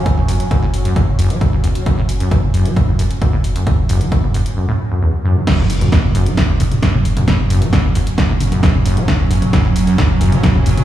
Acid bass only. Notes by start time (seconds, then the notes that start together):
0.06 E3
0.17 E2
0.28 F#2
0.51 F#2
0.62 A2
0.85 F#2
0.96 E2
1.19 F#2
1.30 F#3
1.41 E3
1.53 E2
1.64 F#2
1.86 F#2
1.98 A2
2.20 F#2
2.31 E2
2.54 F#2
2.66 F#3
2.77 E3
2.88 E2
2.99 F#2
3.22 F#2
3.33 A2
3.56 F#2
3.67 E2
3.89 F#2
4.01 F#3
4.12 E3
4.23 E2
4.34 F#2
4.57 F#2
4.68 A2
4.91 F#2
5.02 E2
5.25 F#2
5.36 F#3
5.47 F#2
5.59 A2
5.81 F#2
5.92 E2
6.15 F#2
6.26 F#3
6.37 E3
6.49 E2
6.60 F#2
6.83 F#2
6.94 A2
7.17 F#2
7.28 E2
7.50 F#2
7.62 F#3
7.73 E3
7.84 E2
7.95 F#2
8.18 F#2
8.29 A2
8.52 F#2
8.63 E2
8.85 F#2
8.97 F#3
9.08 E3
9.20 E2
9.31 F#2
9.53 F#2
9.65 A2
9.87 F#2
9.98 E2
10.21 F#2
10.32 F#3
10.43 E3
10.55 E2
10.66 F#2